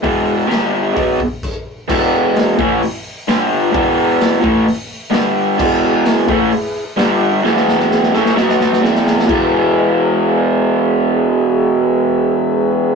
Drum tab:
CC |------------x---|x---------------|----------------|x---------------|
HH |o---o---o-------|----o---o---o---|o---o---o---o---|----o---o---o---|
SD |----o-----------|----o-------o---|----o-------o---|----o-------o---|
BD |o-------o-o-o---|o-----o---------|o-----o---------|o-----o---------|

CC |----------------|x---------------|----------------|
HH |----------------|----------------|----------------|
SD |oooooooooooooooo|----------------|----------------|
BD |----------------|o---------------|----------------|